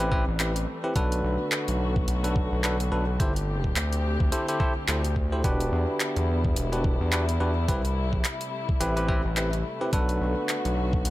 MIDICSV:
0, 0, Header, 1, 5, 480
1, 0, Start_track
1, 0, Tempo, 560748
1, 819, Time_signature, 4, 2, 24, 8
1, 9502, End_track
2, 0, Start_track
2, 0, Title_t, "Tine electric piano"
2, 0, Program_c, 0, 4
2, 99, Note_on_c, 0, 60, 96
2, 99, Note_on_c, 0, 64, 85
2, 99, Note_on_c, 0, 67, 87
2, 99, Note_on_c, 0, 71, 104
2, 205, Note_off_c, 0, 60, 0
2, 205, Note_off_c, 0, 64, 0
2, 206, Note_off_c, 0, 67, 0
2, 206, Note_off_c, 0, 71, 0
2, 339, Note_on_c, 0, 60, 78
2, 339, Note_on_c, 0, 64, 72
2, 340, Note_on_c, 0, 67, 73
2, 340, Note_on_c, 0, 71, 85
2, 445, Note_off_c, 0, 60, 0
2, 446, Note_off_c, 0, 64, 0
2, 446, Note_off_c, 0, 67, 0
2, 446, Note_off_c, 0, 71, 0
2, 718, Note_on_c, 0, 60, 83
2, 718, Note_on_c, 0, 64, 75
2, 718, Note_on_c, 0, 67, 77
2, 718, Note_on_c, 0, 71, 90
2, 795, Note_off_c, 0, 60, 0
2, 795, Note_off_c, 0, 64, 0
2, 795, Note_off_c, 0, 67, 0
2, 795, Note_off_c, 0, 71, 0
2, 820, Note_on_c, 0, 62, 95
2, 820, Note_on_c, 0, 66, 88
2, 820, Note_on_c, 0, 69, 89
2, 820, Note_on_c, 0, 71, 104
2, 1885, Note_off_c, 0, 62, 0
2, 1885, Note_off_c, 0, 66, 0
2, 1885, Note_off_c, 0, 69, 0
2, 1885, Note_off_c, 0, 71, 0
2, 1917, Note_on_c, 0, 71, 86
2, 1918, Note_on_c, 0, 62, 77
2, 1918, Note_on_c, 0, 66, 73
2, 1918, Note_on_c, 0, 69, 73
2, 2234, Note_off_c, 0, 71, 0
2, 2235, Note_off_c, 0, 62, 0
2, 2235, Note_off_c, 0, 66, 0
2, 2235, Note_off_c, 0, 69, 0
2, 2259, Note_on_c, 0, 69, 73
2, 2259, Note_on_c, 0, 71, 91
2, 2260, Note_on_c, 0, 62, 82
2, 2260, Note_on_c, 0, 66, 72
2, 2365, Note_off_c, 0, 69, 0
2, 2365, Note_off_c, 0, 71, 0
2, 2366, Note_off_c, 0, 62, 0
2, 2366, Note_off_c, 0, 66, 0
2, 2498, Note_on_c, 0, 62, 84
2, 2498, Note_on_c, 0, 69, 75
2, 2498, Note_on_c, 0, 71, 93
2, 2499, Note_on_c, 0, 66, 75
2, 2605, Note_off_c, 0, 62, 0
2, 2605, Note_off_c, 0, 66, 0
2, 2605, Note_off_c, 0, 69, 0
2, 2605, Note_off_c, 0, 71, 0
2, 2738, Note_on_c, 0, 69, 81
2, 2738, Note_on_c, 0, 72, 100
2, 2739, Note_on_c, 0, 64, 89
2, 2739, Note_on_c, 0, 67, 83
2, 2845, Note_off_c, 0, 64, 0
2, 2845, Note_off_c, 0, 67, 0
2, 2845, Note_off_c, 0, 69, 0
2, 2845, Note_off_c, 0, 72, 0
2, 3698, Note_on_c, 0, 64, 94
2, 3698, Note_on_c, 0, 69, 88
2, 3698, Note_on_c, 0, 72, 105
2, 3699, Note_on_c, 0, 67, 86
2, 3817, Note_off_c, 0, 64, 0
2, 3817, Note_off_c, 0, 67, 0
2, 3817, Note_off_c, 0, 69, 0
2, 3817, Note_off_c, 0, 72, 0
2, 3839, Note_on_c, 0, 64, 74
2, 3839, Note_on_c, 0, 67, 72
2, 3839, Note_on_c, 0, 69, 69
2, 3839, Note_on_c, 0, 72, 85
2, 3924, Note_off_c, 0, 64, 0
2, 3924, Note_off_c, 0, 69, 0
2, 3924, Note_off_c, 0, 72, 0
2, 3925, Note_off_c, 0, 67, 0
2, 3937, Note_on_c, 0, 64, 93
2, 3937, Note_on_c, 0, 69, 86
2, 3937, Note_on_c, 0, 72, 104
2, 3938, Note_on_c, 0, 67, 89
2, 4044, Note_off_c, 0, 64, 0
2, 4044, Note_off_c, 0, 72, 0
2, 4045, Note_off_c, 0, 67, 0
2, 4045, Note_off_c, 0, 69, 0
2, 4178, Note_on_c, 0, 64, 76
2, 4178, Note_on_c, 0, 67, 68
2, 4178, Note_on_c, 0, 69, 70
2, 4179, Note_on_c, 0, 72, 86
2, 4285, Note_off_c, 0, 64, 0
2, 4285, Note_off_c, 0, 67, 0
2, 4285, Note_off_c, 0, 69, 0
2, 4285, Note_off_c, 0, 72, 0
2, 4557, Note_on_c, 0, 64, 83
2, 4557, Note_on_c, 0, 67, 74
2, 4557, Note_on_c, 0, 72, 88
2, 4558, Note_on_c, 0, 69, 73
2, 4635, Note_off_c, 0, 64, 0
2, 4635, Note_off_c, 0, 67, 0
2, 4635, Note_off_c, 0, 69, 0
2, 4635, Note_off_c, 0, 72, 0
2, 4659, Note_on_c, 0, 62, 96
2, 4659, Note_on_c, 0, 66, 87
2, 4659, Note_on_c, 0, 67, 86
2, 4660, Note_on_c, 0, 71, 103
2, 5725, Note_off_c, 0, 62, 0
2, 5725, Note_off_c, 0, 66, 0
2, 5725, Note_off_c, 0, 67, 0
2, 5725, Note_off_c, 0, 71, 0
2, 5756, Note_on_c, 0, 62, 79
2, 5756, Note_on_c, 0, 66, 73
2, 5757, Note_on_c, 0, 67, 72
2, 5757, Note_on_c, 0, 71, 84
2, 6074, Note_off_c, 0, 62, 0
2, 6074, Note_off_c, 0, 66, 0
2, 6074, Note_off_c, 0, 67, 0
2, 6074, Note_off_c, 0, 71, 0
2, 6096, Note_on_c, 0, 62, 79
2, 6097, Note_on_c, 0, 66, 74
2, 6097, Note_on_c, 0, 67, 74
2, 6097, Note_on_c, 0, 71, 90
2, 6204, Note_off_c, 0, 62, 0
2, 6204, Note_off_c, 0, 66, 0
2, 6204, Note_off_c, 0, 67, 0
2, 6204, Note_off_c, 0, 71, 0
2, 6338, Note_on_c, 0, 62, 87
2, 6338, Note_on_c, 0, 66, 77
2, 6338, Note_on_c, 0, 71, 93
2, 6339, Note_on_c, 0, 67, 76
2, 6445, Note_off_c, 0, 62, 0
2, 6445, Note_off_c, 0, 66, 0
2, 6445, Note_off_c, 0, 67, 0
2, 6445, Note_off_c, 0, 71, 0
2, 6578, Note_on_c, 0, 67, 87
2, 6579, Note_on_c, 0, 60, 95
2, 6579, Note_on_c, 0, 64, 85
2, 6579, Note_on_c, 0, 71, 102
2, 6685, Note_off_c, 0, 60, 0
2, 6685, Note_off_c, 0, 64, 0
2, 6685, Note_off_c, 0, 67, 0
2, 6685, Note_off_c, 0, 71, 0
2, 7537, Note_on_c, 0, 60, 98
2, 7537, Note_on_c, 0, 67, 90
2, 7537, Note_on_c, 0, 71, 106
2, 7538, Note_on_c, 0, 64, 90
2, 7656, Note_off_c, 0, 60, 0
2, 7656, Note_off_c, 0, 64, 0
2, 7656, Note_off_c, 0, 67, 0
2, 7656, Note_off_c, 0, 71, 0
2, 7676, Note_on_c, 0, 60, 77
2, 7676, Note_on_c, 0, 64, 71
2, 7676, Note_on_c, 0, 67, 71
2, 7676, Note_on_c, 0, 71, 86
2, 7763, Note_off_c, 0, 60, 0
2, 7763, Note_off_c, 0, 64, 0
2, 7763, Note_off_c, 0, 67, 0
2, 7763, Note_off_c, 0, 71, 0
2, 7778, Note_on_c, 0, 60, 98
2, 7778, Note_on_c, 0, 64, 88
2, 7778, Note_on_c, 0, 67, 86
2, 7778, Note_on_c, 0, 71, 105
2, 7885, Note_off_c, 0, 60, 0
2, 7885, Note_off_c, 0, 64, 0
2, 7885, Note_off_c, 0, 67, 0
2, 7885, Note_off_c, 0, 71, 0
2, 8017, Note_on_c, 0, 64, 72
2, 8017, Note_on_c, 0, 67, 71
2, 8018, Note_on_c, 0, 60, 80
2, 8018, Note_on_c, 0, 71, 89
2, 8124, Note_off_c, 0, 64, 0
2, 8124, Note_off_c, 0, 67, 0
2, 8125, Note_off_c, 0, 60, 0
2, 8125, Note_off_c, 0, 71, 0
2, 8398, Note_on_c, 0, 60, 83
2, 8398, Note_on_c, 0, 64, 76
2, 8398, Note_on_c, 0, 67, 74
2, 8399, Note_on_c, 0, 71, 91
2, 8475, Note_off_c, 0, 60, 0
2, 8475, Note_off_c, 0, 64, 0
2, 8475, Note_off_c, 0, 67, 0
2, 8476, Note_off_c, 0, 71, 0
2, 8499, Note_on_c, 0, 62, 93
2, 8500, Note_on_c, 0, 66, 89
2, 8500, Note_on_c, 0, 69, 90
2, 8500, Note_on_c, 0, 71, 107
2, 9502, Note_off_c, 0, 62, 0
2, 9502, Note_off_c, 0, 66, 0
2, 9502, Note_off_c, 0, 69, 0
2, 9502, Note_off_c, 0, 71, 0
2, 9502, End_track
3, 0, Start_track
3, 0, Title_t, "String section"
3, 0, Program_c, 1, 48
3, 0, Note_on_c, 1, 52, 78
3, 0, Note_on_c, 1, 55, 82
3, 0, Note_on_c, 1, 57, 68
3, 0, Note_on_c, 1, 60, 70
3, 784, Note_off_c, 1, 55, 0
3, 801, Note_off_c, 1, 52, 0
3, 801, Note_off_c, 1, 60, 0
3, 821, Note_on_c, 1, 50, 79
3, 821, Note_on_c, 1, 59, 70
3, 821, Note_on_c, 1, 66, 84
3, 2721, Note_off_c, 1, 59, 0
3, 2721, Note_off_c, 1, 66, 0
3, 2739, Note_on_c, 1, 67, 88
3, 2740, Note_on_c, 1, 60, 70
3, 4625, Note_off_c, 1, 57, 0
3, 4640, Note_off_c, 1, 60, 0
3, 4640, Note_off_c, 1, 67, 0
3, 4653, Note_on_c, 1, 59, 68
3, 4655, Note_on_c, 1, 55, 70
3, 4656, Note_on_c, 1, 64, 88
3, 6546, Note_off_c, 1, 50, 0
3, 6557, Note_off_c, 1, 59, 0
3, 6578, Note_on_c, 1, 48, 75
3, 6578, Note_on_c, 1, 57, 71
3, 8463, Note_off_c, 1, 55, 0
3, 8463, Note_off_c, 1, 64, 0
3, 8479, Note_off_c, 1, 48, 0
3, 8501, Note_on_c, 1, 59, 73
3, 8501, Note_on_c, 1, 66, 84
3, 8502, Note_on_c, 1, 50, 75
3, 9502, Note_off_c, 1, 50, 0
3, 9502, Note_off_c, 1, 57, 0
3, 9502, Note_off_c, 1, 59, 0
3, 9502, Note_off_c, 1, 66, 0
3, 9502, End_track
4, 0, Start_track
4, 0, Title_t, "Analog synth bass"
4, 0, Program_c, 2, 38
4, 0, Note_on_c, 2, 33, 94
4, 216, Note_off_c, 2, 33, 0
4, 239, Note_on_c, 2, 33, 96
4, 563, Note_off_c, 2, 33, 0
4, 819, Note_on_c, 2, 35, 96
4, 1043, Note_off_c, 2, 35, 0
4, 1060, Note_on_c, 2, 35, 95
4, 1176, Note_off_c, 2, 35, 0
4, 1440, Note_on_c, 2, 35, 97
4, 1764, Note_off_c, 2, 35, 0
4, 1779, Note_on_c, 2, 35, 96
4, 2136, Note_off_c, 2, 35, 0
4, 2161, Note_on_c, 2, 35, 96
4, 2484, Note_off_c, 2, 35, 0
4, 2500, Note_on_c, 2, 35, 91
4, 2723, Note_off_c, 2, 35, 0
4, 2739, Note_on_c, 2, 31, 95
4, 3203, Note_off_c, 2, 31, 0
4, 3219, Note_on_c, 2, 38, 96
4, 3576, Note_off_c, 2, 38, 0
4, 3598, Note_on_c, 2, 38, 94
4, 3683, Note_off_c, 2, 38, 0
4, 4180, Note_on_c, 2, 38, 94
4, 4643, Note_off_c, 2, 38, 0
4, 4658, Note_on_c, 2, 28, 94
4, 4882, Note_off_c, 2, 28, 0
4, 4900, Note_on_c, 2, 40, 97
4, 5016, Note_off_c, 2, 40, 0
4, 5278, Note_on_c, 2, 40, 99
4, 5603, Note_off_c, 2, 40, 0
4, 5619, Note_on_c, 2, 28, 91
4, 5976, Note_off_c, 2, 28, 0
4, 5998, Note_on_c, 2, 40, 97
4, 6323, Note_off_c, 2, 40, 0
4, 6338, Note_on_c, 2, 40, 93
4, 6563, Note_off_c, 2, 40, 0
4, 6579, Note_on_c, 2, 36, 93
4, 7043, Note_off_c, 2, 36, 0
4, 7540, Note_on_c, 2, 33, 94
4, 7897, Note_off_c, 2, 33, 0
4, 7919, Note_on_c, 2, 33, 99
4, 8243, Note_off_c, 2, 33, 0
4, 8499, Note_on_c, 2, 35, 97
4, 8723, Note_off_c, 2, 35, 0
4, 8739, Note_on_c, 2, 35, 95
4, 8856, Note_off_c, 2, 35, 0
4, 9119, Note_on_c, 2, 35, 96
4, 9443, Note_off_c, 2, 35, 0
4, 9459, Note_on_c, 2, 35, 92
4, 9502, Note_off_c, 2, 35, 0
4, 9502, End_track
5, 0, Start_track
5, 0, Title_t, "Drums"
5, 99, Note_on_c, 9, 36, 107
5, 185, Note_off_c, 9, 36, 0
5, 340, Note_on_c, 9, 39, 121
5, 340, Note_on_c, 9, 42, 83
5, 426, Note_off_c, 9, 39, 0
5, 426, Note_off_c, 9, 42, 0
5, 479, Note_on_c, 9, 42, 56
5, 564, Note_off_c, 9, 42, 0
5, 818, Note_on_c, 9, 42, 76
5, 819, Note_on_c, 9, 36, 119
5, 904, Note_off_c, 9, 42, 0
5, 905, Note_off_c, 9, 36, 0
5, 959, Note_on_c, 9, 42, 54
5, 1044, Note_off_c, 9, 42, 0
5, 1299, Note_on_c, 9, 39, 115
5, 1299, Note_on_c, 9, 42, 79
5, 1385, Note_off_c, 9, 39, 0
5, 1385, Note_off_c, 9, 42, 0
5, 1438, Note_on_c, 9, 42, 53
5, 1524, Note_off_c, 9, 42, 0
5, 1678, Note_on_c, 9, 36, 107
5, 1763, Note_off_c, 9, 36, 0
5, 1779, Note_on_c, 9, 42, 81
5, 1865, Note_off_c, 9, 42, 0
5, 1920, Note_on_c, 9, 42, 53
5, 2005, Note_off_c, 9, 42, 0
5, 2018, Note_on_c, 9, 36, 111
5, 2104, Note_off_c, 9, 36, 0
5, 2259, Note_on_c, 9, 39, 122
5, 2259, Note_on_c, 9, 42, 82
5, 2345, Note_off_c, 9, 39, 0
5, 2345, Note_off_c, 9, 42, 0
5, 2398, Note_on_c, 9, 42, 53
5, 2483, Note_off_c, 9, 42, 0
5, 2738, Note_on_c, 9, 36, 117
5, 2739, Note_on_c, 9, 42, 74
5, 2824, Note_off_c, 9, 36, 0
5, 2825, Note_off_c, 9, 42, 0
5, 2879, Note_on_c, 9, 42, 51
5, 2964, Note_off_c, 9, 42, 0
5, 3117, Note_on_c, 9, 36, 59
5, 3203, Note_off_c, 9, 36, 0
5, 3221, Note_on_c, 9, 39, 119
5, 3221, Note_on_c, 9, 42, 74
5, 3306, Note_off_c, 9, 39, 0
5, 3306, Note_off_c, 9, 42, 0
5, 3360, Note_on_c, 9, 42, 50
5, 3446, Note_off_c, 9, 42, 0
5, 3597, Note_on_c, 9, 36, 109
5, 3683, Note_off_c, 9, 36, 0
5, 3700, Note_on_c, 9, 42, 79
5, 3785, Note_off_c, 9, 42, 0
5, 3839, Note_on_c, 9, 42, 52
5, 3925, Note_off_c, 9, 42, 0
5, 3938, Note_on_c, 9, 36, 109
5, 4024, Note_off_c, 9, 36, 0
5, 4180, Note_on_c, 9, 39, 119
5, 4180, Note_on_c, 9, 42, 79
5, 4266, Note_off_c, 9, 39, 0
5, 4266, Note_off_c, 9, 42, 0
5, 4318, Note_on_c, 9, 42, 54
5, 4404, Note_off_c, 9, 42, 0
5, 4418, Note_on_c, 9, 36, 60
5, 4503, Note_off_c, 9, 36, 0
5, 4658, Note_on_c, 9, 36, 113
5, 4659, Note_on_c, 9, 42, 74
5, 4743, Note_off_c, 9, 36, 0
5, 4744, Note_off_c, 9, 42, 0
5, 4797, Note_on_c, 9, 42, 50
5, 4883, Note_off_c, 9, 42, 0
5, 5138, Note_on_c, 9, 39, 114
5, 5138, Note_on_c, 9, 42, 73
5, 5224, Note_off_c, 9, 39, 0
5, 5224, Note_off_c, 9, 42, 0
5, 5277, Note_on_c, 9, 42, 49
5, 5362, Note_off_c, 9, 42, 0
5, 5517, Note_on_c, 9, 36, 104
5, 5602, Note_off_c, 9, 36, 0
5, 5619, Note_on_c, 9, 42, 74
5, 5704, Note_off_c, 9, 42, 0
5, 5759, Note_on_c, 9, 42, 48
5, 5844, Note_off_c, 9, 42, 0
5, 5858, Note_on_c, 9, 36, 106
5, 5943, Note_off_c, 9, 36, 0
5, 6099, Note_on_c, 9, 39, 117
5, 6099, Note_on_c, 9, 42, 76
5, 6184, Note_off_c, 9, 39, 0
5, 6184, Note_off_c, 9, 42, 0
5, 6238, Note_on_c, 9, 42, 50
5, 6324, Note_off_c, 9, 42, 0
5, 6578, Note_on_c, 9, 36, 112
5, 6578, Note_on_c, 9, 42, 74
5, 6664, Note_off_c, 9, 36, 0
5, 6664, Note_off_c, 9, 42, 0
5, 6718, Note_on_c, 9, 42, 48
5, 6803, Note_off_c, 9, 42, 0
5, 6957, Note_on_c, 9, 36, 57
5, 7043, Note_off_c, 9, 36, 0
5, 7058, Note_on_c, 9, 39, 107
5, 7058, Note_on_c, 9, 42, 73
5, 7144, Note_off_c, 9, 39, 0
5, 7144, Note_off_c, 9, 42, 0
5, 7197, Note_on_c, 9, 42, 48
5, 7283, Note_off_c, 9, 42, 0
5, 7437, Note_on_c, 9, 36, 98
5, 7523, Note_off_c, 9, 36, 0
5, 7538, Note_on_c, 9, 42, 76
5, 7624, Note_off_c, 9, 42, 0
5, 7678, Note_on_c, 9, 42, 48
5, 7763, Note_off_c, 9, 42, 0
5, 7778, Note_on_c, 9, 36, 102
5, 7864, Note_off_c, 9, 36, 0
5, 8020, Note_on_c, 9, 39, 114
5, 8020, Note_on_c, 9, 42, 73
5, 8106, Note_off_c, 9, 39, 0
5, 8106, Note_off_c, 9, 42, 0
5, 8159, Note_on_c, 9, 42, 52
5, 8245, Note_off_c, 9, 42, 0
5, 8499, Note_on_c, 9, 36, 110
5, 8499, Note_on_c, 9, 42, 76
5, 8584, Note_off_c, 9, 36, 0
5, 8584, Note_off_c, 9, 42, 0
5, 8637, Note_on_c, 9, 42, 51
5, 8723, Note_off_c, 9, 42, 0
5, 8979, Note_on_c, 9, 39, 107
5, 8979, Note_on_c, 9, 42, 74
5, 9065, Note_off_c, 9, 39, 0
5, 9065, Note_off_c, 9, 42, 0
5, 9118, Note_on_c, 9, 42, 50
5, 9204, Note_off_c, 9, 42, 0
5, 9357, Note_on_c, 9, 36, 100
5, 9443, Note_off_c, 9, 36, 0
5, 9460, Note_on_c, 9, 42, 76
5, 9502, Note_off_c, 9, 42, 0
5, 9502, End_track
0, 0, End_of_file